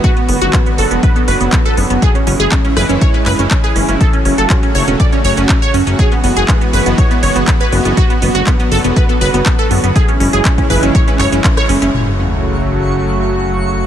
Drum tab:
HH |xxoxxxoxxxoxxxox|xxoxxxoxxxoxxxox|xxoxxxoxxxoxxxox|xxoxxxoxxxoxxxox|
CP |----x-------x---|----x-----x-x---|----x-------x---|----x-------x---|
SD |----------------|------r---------|----------------|----------------|
BD |o---o---o---o---|o---o---o---o---|o---o---o---o---|o---o---o---o---|

HH |xxoxxxoxxxoxxxox|xxoxxxoxxxoxxxox|----------------|
CP |----x-------x---|----x-----x-x---|----------------|
SD |----------------|-------------r--|----------------|
BD |o---o---o---o---|o---oo--o---o---|----------------|